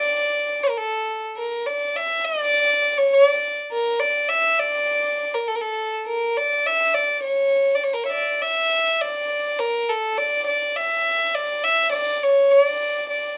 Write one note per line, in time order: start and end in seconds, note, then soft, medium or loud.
0.00 0.65 D5 loud
0.63 0.79 A#4 medium
0.78 1.22 A4 medium
1.37 1.68 A#4 medium
1.66 1.97 D5 medium
1.96 2.27 E5 medium
2.25 3.00 D5 loud
2.98 3.14 C#5 medium
3.14 3.26 C#5 medium
3.26 3.57 D5 medium
3.72 4.01 A#4 medium
4.00 4.31 D5 medium
4.29 4.61 E5 medium
4.59 5.36 D5 medium
5.34 5.49 A#4 medium
5.48 5.57 A4 medium
5.55 5.63 A#4 medium
5.61 5.91 A4 medium
6.06 6.38 A#4 medium
6.37 6.68 D5 medium
6.66 6.96 E5 medium
6.95 7.23 D5 medium
7.23 7.77 C#5 medium
7.75 7.85 D5 medium
7.84 7.95 C#5 medium
7.93 8.05 A#4 medium
8.04 8.07 C#5 medium
8.04 8.14 E5 medium
8.13 8.43 D5 medium
8.42 9.03 E5 medium
9.01 9.61 D5 medium
9.59 9.91 A#4 medium
9.89 10.19 A4 medium
10.18 10.47 D5 medium
10.47 10.77 D5 medium
10.76 11.36 E5 medium
11.35 11.65 D5 medium
11.64 11.92 E5 medium
11.93 12.25 D5 loud
12.23 12.51 C#5 medium
12.51 12.63 C#5 loud
12.63 13.09 D5 loud
13.10 13.37 D5 medium